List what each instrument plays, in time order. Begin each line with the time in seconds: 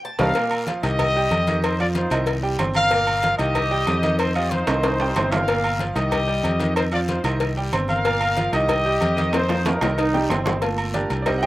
0.05 cuban tres A5
0.19 fingered electric bass C2, grand piano G3 C4 D#4, trumpet section A#4 F5, cowbell, high conga, high timbale, long guiro
0.35 grand piano A#2 A#3 A#4, cowbell, low agogo, long guiro
0.51 high conga, low agogo
0.67 grand piano F3 F4 F5, cowbell, high conga, short guiro
0.83 fingered electric bass C2, grand piano D#3 D#4 D#5, trumpet section G4 D#5, cowbell, low agogo, short guiro
0.99 cowbell, high conga, low conga, low agogo, long guiro
1.15 grand piano G3 G4 G5, high conga
1.31 fingered electric bass F2, cowbell, high conga, low agogo, short guiro
1.47 grand piano D#3 D#4 D#5, cowbell, high conga, short guiro
1.62 trumpet section D#4 C5, cowbell, high conga, low agogo, long guiro
1.79 grand piano F3 F4 F5, trumpet section F4 D5, high conga, low agogo
1.95 trumpet section D#4 C5, cowbell, high conga, short guiro
2.10 fingered electric bass C2, grand piano D#3 D#4 D#5, cowbell, low agogo, short guiro
2.26 cowbell, high conga, low agogo, long guiro
2.43 grand piano G3 G4 G5, high conga
2.59 fingered electric bass G1, grand piano C4 C5 C6, cowbell, high conga, low timbale, low agogo, short guiro
2.74 trumpet section A#4 F5, high conga, low agogo, short guiro
2.90 grand piano A#2 A#3 A#4, cowbell, low agogo, long guiro
3.07 high conga, low agogo
3.22 grand piano F3 F4 F5, cowbell, high conga, short guiro
3.38 fingered electric bass C2, grand piano D#3 D#4 D#5, trumpet section G4 D#5, cowbell, low agogo, short guiro
3.55 cowbell, high conga, low conga, low agogo, long guiro
3.71 grand piano G3 G4 G5, high conga
3.87 fingered electric bass F2, cowbell, high conga, low timbale, low agogo, short guiro
4.03 grand piano D#3 D#4 D#5, cowbell, high conga, short guiro
4.19 trumpet section D#4 C5, cowbell, low agogo, long guiro
4.34 grand piano F3 F4 F5, trumpet section G4 D#5, high conga, low agogo
4.50 trumpet section D#4 C5, cowbell, high conga, short guiro
4.67 fingered electric bass C2, grand piano D#3 D#4 D#5, cowbell, high timbale, low agogo, short guiro
4.83 cowbell, high conga, high timbale, low agogo, long guiro
5.00 grand piano G3 G4 G5, high conga, high timbale
5.16 fingered electric bass G1, grand piano C4 C5 C6, cowbell, high conga, low timbale, low agogo, short guiro
5.31 trumpet section A#4 F5, high conga, low timbale, low agogo, short guiro
5.48 grand piano A#2 A#3 A#4, cowbell, low agogo, long guiro
5.64 high conga, low agogo
5.79 grand piano F3 F4 F5, cowbell, high conga, short guiro
5.95 fingered electric bass C2, grand piano D#3 D#4 D#5, trumpet section G4 D#5, cowbell, low agogo, short guiro
6.11 cowbell, high conga, low conga, low agogo, long guiro
6.27 grand piano G3 G4 G5
6.44 fingered electric bass F2, cowbell, high conga, low agogo, short guiro
6.59 grand piano D#3 D#4 D#5, cowbell, high conga, short guiro
6.76 trumpet section D#4 C5, cowbell, low agogo, long guiro
6.92 grand piano F3 F4 F5, trumpet section F4 D5, high conga, low agogo
7.08 trumpet section D#4 C5, cowbell, high conga, short guiro
7.24 fingered electric bass C2, grand piano D#3 D#4 D#5, cowbell, low agogo, short guiro
7.40 cowbell, high conga, low agogo, long guiro
7.57 grand piano G3 G4 G5
7.72 fingered electric bass G1, grand piano C4 C5 C6, cowbell, high conga, low agogo, short guiro
7.88 trumpet section A#4 F5, high conga, low agogo, short guiro
8.05 grand piano A#2 A#3 A#4, cowbell, low agogo, long guiro
8.20 high conga, low agogo
8.36 grand piano F3 F4 F5, cowbell, high conga, short guiro
8.52 fingered electric bass C2, grand piano D#3 D#4 D#5, trumpet section G4 D#5, cowbell, low agogo, short guiro
8.68 cowbell, high conga, low conga, low agogo, long guiro
8.85 grand piano G3 G4 G5, high conga
9.01 fingered electric bass F2, cowbell, high conga, low agogo, short guiro
9.16 grand piano D#3 D#4 D#5, cowbell, high conga, short guiro
9.33 trumpet section D#4 C5, cowbell, high bongo, high timbale, low agogo, long guiro
9.49 grand piano F3 F4 F5, high bongo, high conga, high timbale, low agogo
9.66 trumpet section D#4 A#4, cowbell, high bongo, high conga, high timbale, short guiro
9.81 fingered electric bass C2, grand piano D#3 D#4 D#5, cowbell, high bongo, low timbale, low agogo, short guiro
9.97 trombone section D#4, cowbell, high conga, low agogo, long guiro
10.13 grand piano G3 G4 G5, low bongo
10.29 fingered electric bass G1, grand piano C4 C5 C6, trombone section C4, cowbell, low bongo, high conga, low timbale, low agogo, short guiro
10.46 low bongo, high conga, low timbale, low agogo, short guiro
10.62 grand piano A3 A#3 F4, cowbell, high conga, low agogo, long guiro
10.77 high conga, low agogo
10.94 grand piano D4 G4 A#4 D5, cowbell, high conga, short guiro
11.10 fingered electric bass C2, cowbell, high conga, low agogo, short guiro
11.22 grand piano G3 D5, cowbell, low agogo, long guiro
11.27 grand piano C4 D#4 G4 C5 D#5, high conga, low conga
11.38 grand piano F#5
11.43 grand piano G4 C5 D#5 G5, high conga